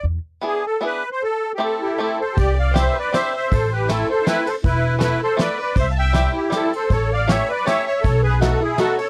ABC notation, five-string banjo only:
X:1
M:3/4
L:1/8
Q:"Swing" 1/4=158
K:Am
V:1 name="Five-string banjo"
z2 [B,DE^G] z [B,DEG] z | z2 [A,CEG] z [A,CEG] z | z2 [CDEG] z [CDEG] z | z2 [A,CEA] z [A,CEA] z |
z2 [A,B,EA] z [A,B,EA] z | z2 [G,CEG] z [G,CEG] z | z2 [A,^CEG] z [A,CEG] z | z2 [A,B,^D^F] z [A,B,DF] z |]